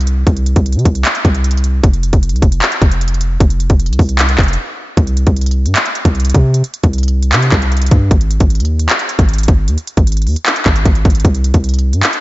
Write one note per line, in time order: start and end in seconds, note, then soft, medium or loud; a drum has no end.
0.00 0.24 C2 loud
0.00 closed hi-hat soft
0.07 closed hi-hat medium
0.27 0.55 C2 loud
0.27 kick loud
0.27 closed hi-hat medium
0.37 closed hi-hat medium
0.46 closed hi-hat medium
0.56 0.77 C2 loud
0.56 kick medium
0.56 closed hi-hat medium
0.66 closed hi-hat medium
0.72 0.85 C3 loud
0.72 closed hi-hat soft
0.79 closed hi-hat soft
0.85 1.04 C2 loud
0.85 kick medium
0.85 closed hi-hat medium
0.95 closed hi-hat medium
1.05 clap loud
1.05 closed hi-hat medium
1.15 closed hi-hat medium
1.25 1.81 C2 loud
1.25 kick loud
1.25 closed hi-hat medium
1.35 closed hi-hat medium
1.44 closed hi-hat medium
1.51 closed hi-hat medium
1.57 closed hi-hat soft
1.64 closed hi-hat medium
1.84 2.12 F1 loud
1.84 kick loud
1.84 closed hi-hat medium
1.93 closed hi-hat medium
2.03 closed hi-hat medium
2.13 2.34 F1 loud
2.13 kick medium
2.13 closed hi-hat medium
2.23 closed hi-hat medium
2.29 2.42 C2 loud
2.29 closed hi-hat soft
2.36 closed hi-hat soft
2.42 2.61 F1 loud
2.42 kick medium
2.42 closed hi-hat medium
2.52 closed hi-hat medium
2.62 clap loud
2.62 closed hi-hat medium
2.72 closed hi-hat medium
2.82 3.38 F1 loud
2.82 kick loud
2.82 closed hi-hat medium
2.91 closed hi-hat medium
3.01 closed hi-hat medium
3.08 closed hi-hat medium
3.14 closed hi-hat soft
3.21 closed hi-hat medium
3.40 3.69 F1 loud
3.40 kick loud
3.40 closed hi-hat medium
3.50 closed hi-hat medium
3.60 closed hi-hat medium
3.70 3.91 F1 loud
3.70 kick medium
3.70 closed hi-hat medium
3.80 closed hi-hat medium
3.86 3.99 C2 medium
3.86 closed hi-hat soft
3.93 closed hi-hat medium
3.99 4.37 C2 loud
3.99 kick medium
3.99 open hi-hat medium
4.09 closed hi-hat medium
4.19 clap loud
4.19 closed hi-hat medium
4.29 closed hi-hat medium
4.38 4.57 F1 loud
4.38 kick loud
4.38 clap medium
4.38 closed hi-hat soft
4.43 closed hi-hat soft
4.48 closed hi-hat medium
4.53 closed hi-hat medium
4.97 5.25 C2 loud
4.97 kick loud
4.97 closed hi-hat medium
5.07 closed hi-hat medium
5.17 closed hi-hat medium
5.27 5.67 C2 loud
5.27 kick medium
5.27 closed hi-hat medium
5.36 closed hi-hat medium
5.41 closed hi-hat medium
5.46 closed hi-hat medium
5.51 closed hi-hat medium
5.66 5.75 G2 loud
5.66 closed hi-hat medium
5.76 clap loud
5.76 closed hi-hat medium
5.86 closed hi-hat medium
5.95 closed hi-hat medium
6.05 6.33 C2 loud
6.05 kick loud
6.05 closed hi-hat medium
6.15 closed hi-hat soft
6.20 closed hi-hat medium
6.25 closed hi-hat medium
6.30 closed hi-hat medium
6.34 6.63 C3 loud
6.34 kick loud
6.34 closed hi-hat medium
6.54 closed hi-hat medium
6.64 closed hi-hat medium
6.74 closed hi-hat medium
6.83 7.34 C2 loud
6.83 kick medium
6.83 closed hi-hat medium
6.93 closed hi-hat medium
6.98 closed hi-hat medium
7.03 closed hi-hat medium
7.08 closed hi-hat medium
7.23 closed hi-hat medium
7.33 7.51 C3 loud
7.33 clap loud
7.33 closed hi-hat medium
7.42 closed hi-hat medium
7.52 7.90 C2 loud
7.52 kick loud
7.52 clap medium
7.52 closed hi-hat medium
7.62 closed hi-hat medium
7.72 closed hi-hat soft
7.77 closed hi-hat medium
7.82 closed hi-hat medium
7.86 closed hi-hat medium
7.91 8.10 G2 loud
7.91 kick loud
7.91 closed hi-hat medium
8.11 8.39 G#1 loud
8.11 kick loud
8.11 closed hi-hat medium
8.21 closed hi-hat medium
8.31 closed hi-hat medium
8.40 8.61 G#1 loud
8.40 kick medium
8.40 closed hi-hat medium
8.50 closed hi-hat medium
8.55 closed hi-hat medium
8.60 8.88 D#2 loud
8.60 closed hi-hat medium
8.65 closed hi-hat medium
8.79 closed hi-hat medium
8.89 clap loud
8.89 closed hi-hat medium
8.99 closed hi-hat medium
9.09 closed hi-hat medium
9.19 9.47 G#1 loud
9.19 kick loud
9.19 closed hi-hat medium
9.29 closed hi-hat soft
9.34 closed hi-hat medium
9.38 closed hi-hat medium
9.43 closed hi-hat medium
9.48 9.69 G1 loud
9.48 kick loud
9.48 closed hi-hat medium
9.68 9.77 D#2 loud
9.68 closed hi-hat medium
9.78 closed hi-hat medium
9.87 closed hi-hat medium
9.97 10.28 G#1 loud
9.97 kick medium
9.97 closed hi-hat medium
10.07 closed hi-hat medium
10.12 closed hi-hat medium
10.17 closed hi-hat soft
10.22 closed hi-hat soft
10.27 10.36 D#2 loud
10.27 open hi-hat medium
10.36 closed hi-hat medium
10.46 clap loud
10.46 closed hi-hat medium
10.56 closed hi-hat medium
10.66 10.85 G#1 loud
10.66 kick loud
10.66 clap medium
10.66 closed hi-hat medium
10.76 closed hi-hat medium
10.85 11.04 G#1 loud
10.85 kick loud
10.85 closed hi-hat medium
10.95 closed hi-hat soft
11.05 11.24 G#1 loud
11.05 kick loud
11.05 closed hi-hat soft
11.10 closed hi-hat medium
11.15 closed hi-hat medium
11.20 closed hi-hat medium
11.25 11.53 C2 loud
11.25 kick loud
11.25 closed hi-hat medium
11.35 closed hi-hat medium
11.44 closed hi-hat medium
11.54 11.95 C2 loud
11.54 kick medium
11.54 closed hi-hat medium
11.64 closed hi-hat medium
11.69 closed hi-hat medium
11.74 closed hi-hat medium
11.79 closed hi-hat medium
11.93 12.03 G2 loud
11.93 closed hi-hat medium
12.03 clap loud
12.03 closed hi-hat medium
12.13 closed hi-hat medium